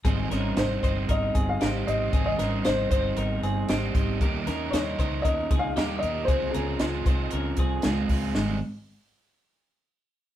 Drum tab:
HH |xxxxxxxx|xxxxxxxx|xxxxxxxx|xxxxxxxo|
SD |-oo---o-|-oo---o-|-oo---o-|--o---o-|
BD |o--ooo--|o--o---o|o--ooo--|o--o-o-o|

HH |--------|
SD |o-------|
BD |--------|